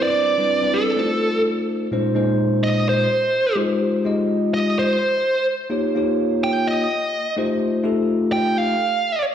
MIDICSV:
0, 0, Header, 1, 3, 480
1, 0, Start_track
1, 0, Tempo, 474308
1, 20, Time_signature, 4, 2, 24, 8
1, 9461, End_track
2, 0, Start_track
2, 0, Title_t, "Lead electric guitar"
2, 0, Program_c, 0, 29
2, 26, Note_on_c, 0, 74, 86
2, 748, Note_on_c, 0, 69, 67
2, 768, Note_off_c, 0, 74, 0
2, 1427, Note_off_c, 0, 69, 0
2, 2668, Note_on_c, 0, 75, 75
2, 2901, Note_off_c, 0, 75, 0
2, 2926, Note_on_c, 0, 72, 55
2, 3597, Note_off_c, 0, 72, 0
2, 4594, Note_on_c, 0, 75, 94
2, 4823, Note_off_c, 0, 75, 0
2, 4846, Note_on_c, 0, 72, 61
2, 5516, Note_off_c, 0, 72, 0
2, 6515, Note_on_c, 0, 79, 97
2, 6743, Note_off_c, 0, 79, 0
2, 6755, Note_on_c, 0, 75, 57
2, 7429, Note_off_c, 0, 75, 0
2, 8424, Note_on_c, 0, 79, 94
2, 8656, Note_off_c, 0, 79, 0
2, 8681, Note_on_c, 0, 77, 70
2, 9351, Note_off_c, 0, 77, 0
2, 9461, End_track
3, 0, Start_track
3, 0, Title_t, "Tine electric piano"
3, 0, Program_c, 1, 4
3, 0, Note_on_c, 1, 55, 71
3, 0, Note_on_c, 1, 60, 63
3, 0, Note_on_c, 1, 62, 67
3, 0, Note_on_c, 1, 64, 68
3, 0, Note_on_c, 1, 71, 76
3, 352, Note_off_c, 1, 55, 0
3, 354, Note_off_c, 1, 60, 0
3, 356, Note_off_c, 1, 62, 0
3, 357, Note_off_c, 1, 64, 0
3, 361, Note_off_c, 1, 71, 0
3, 381, Note_on_c, 1, 55, 59
3, 381, Note_on_c, 1, 60, 56
3, 389, Note_on_c, 1, 62, 56
3, 394, Note_on_c, 1, 64, 58
3, 395, Note_on_c, 1, 71, 68
3, 611, Note_off_c, 1, 55, 0
3, 611, Note_off_c, 1, 60, 0
3, 615, Note_off_c, 1, 62, 0
3, 618, Note_off_c, 1, 64, 0
3, 618, Note_off_c, 1, 71, 0
3, 624, Note_on_c, 1, 55, 66
3, 624, Note_on_c, 1, 60, 59
3, 632, Note_on_c, 1, 62, 64
3, 634, Note_on_c, 1, 64, 60
3, 642, Note_on_c, 1, 71, 70
3, 975, Note_on_c, 1, 57, 72
3, 981, Note_on_c, 1, 61, 63
3, 981, Note_on_c, 1, 63, 68
3, 983, Note_off_c, 1, 55, 0
3, 983, Note_off_c, 1, 60, 0
3, 986, Note_off_c, 1, 62, 0
3, 988, Note_off_c, 1, 64, 0
3, 988, Note_on_c, 1, 65, 69
3, 990, Note_on_c, 1, 72, 79
3, 992, Note_off_c, 1, 71, 0
3, 1893, Note_off_c, 1, 57, 0
3, 1896, Note_off_c, 1, 61, 0
3, 1896, Note_off_c, 1, 63, 0
3, 1900, Note_off_c, 1, 65, 0
3, 1901, Note_off_c, 1, 72, 0
3, 1935, Note_on_c, 1, 46, 78
3, 1942, Note_on_c, 1, 56, 71
3, 1945, Note_on_c, 1, 61, 74
3, 1946, Note_on_c, 1, 65, 71
3, 1950, Note_on_c, 1, 63, 76
3, 1954, Note_on_c, 1, 72, 91
3, 2156, Note_off_c, 1, 46, 0
3, 2159, Note_off_c, 1, 56, 0
3, 2163, Note_off_c, 1, 63, 0
3, 2165, Note_off_c, 1, 61, 0
3, 2168, Note_on_c, 1, 46, 78
3, 2170, Note_off_c, 1, 65, 0
3, 2171, Note_on_c, 1, 56, 71
3, 2174, Note_off_c, 1, 72, 0
3, 2175, Note_on_c, 1, 63, 74
3, 2177, Note_on_c, 1, 61, 72
3, 2182, Note_on_c, 1, 65, 68
3, 2186, Note_on_c, 1, 72, 88
3, 3090, Note_off_c, 1, 46, 0
3, 3091, Note_off_c, 1, 56, 0
3, 3093, Note_off_c, 1, 63, 0
3, 3094, Note_off_c, 1, 61, 0
3, 3097, Note_off_c, 1, 65, 0
3, 3099, Note_off_c, 1, 72, 0
3, 3599, Note_on_c, 1, 56, 85
3, 3607, Note_on_c, 1, 63, 79
3, 3609, Note_on_c, 1, 65, 80
3, 3614, Note_on_c, 1, 67, 76
3, 3620, Note_on_c, 1, 72, 92
3, 4069, Note_off_c, 1, 56, 0
3, 4073, Note_off_c, 1, 63, 0
3, 4074, Note_off_c, 1, 65, 0
3, 4076, Note_off_c, 1, 67, 0
3, 4079, Note_off_c, 1, 72, 0
3, 4093, Note_on_c, 1, 56, 84
3, 4099, Note_on_c, 1, 65, 71
3, 4101, Note_on_c, 1, 63, 73
3, 4105, Note_on_c, 1, 67, 74
3, 4113, Note_on_c, 1, 75, 90
3, 5011, Note_off_c, 1, 56, 0
3, 5014, Note_off_c, 1, 65, 0
3, 5015, Note_off_c, 1, 63, 0
3, 5017, Note_off_c, 1, 67, 0
3, 5021, Note_off_c, 1, 75, 0
3, 5764, Note_on_c, 1, 58, 80
3, 5768, Note_on_c, 1, 63, 77
3, 5770, Note_on_c, 1, 65, 77
3, 5775, Note_on_c, 1, 67, 75
3, 5782, Note_on_c, 1, 73, 89
3, 6003, Note_off_c, 1, 58, 0
3, 6005, Note_off_c, 1, 63, 0
3, 6006, Note_off_c, 1, 65, 0
3, 6008, Note_off_c, 1, 67, 0
3, 6012, Note_off_c, 1, 73, 0
3, 6019, Note_on_c, 1, 58, 82
3, 6027, Note_on_c, 1, 63, 74
3, 6035, Note_on_c, 1, 65, 79
3, 6039, Note_on_c, 1, 67, 75
3, 6045, Note_on_c, 1, 73, 88
3, 6933, Note_off_c, 1, 58, 0
3, 6937, Note_off_c, 1, 63, 0
3, 6941, Note_off_c, 1, 65, 0
3, 6943, Note_off_c, 1, 67, 0
3, 6946, Note_off_c, 1, 73, 0
3, 7453, Note_on_c, 1, 57, 86
3, 7457, Note_on_c, 1, 63, 76
3, 7461, Note_on_c, 1, 67, 85
3, 7464, Note_on_c, 1, 65, 78
3, 7468, Note_on_c, 1, 72, 91
3, 7914, Note_off_c, 1, 57, 0
3, 7915, Note_off_c, 1, 63, 0
3, 7918, Note_off_c, 1, 67, 0
3, 7919, Note_off_c, 1, 65, 0
3, 7921, Note_off_c, 1, 72, 0
3, 7928, Note_on_c, 1, 57, 82
3, 7930, Note_on_c, 1, 63, 73
3, 7930, Note_on_c, 1, 65, 77
3, 7937, Note_on_c, 1, 67, 75
3, 7945, Note_on_c, 1, 69, 89
3, 8846, Note_off_c, 1, 57, 0
3, 8847, Note_off_c, 1, 63, 0
3, 8847, Note_off_c, 1, 65, 0
3, 8851, Note_off_c, 1, 67, 0
3, 8855, Note_off_c, 1, 69, 0
3, 9461, End_track
0, 0, End_of_file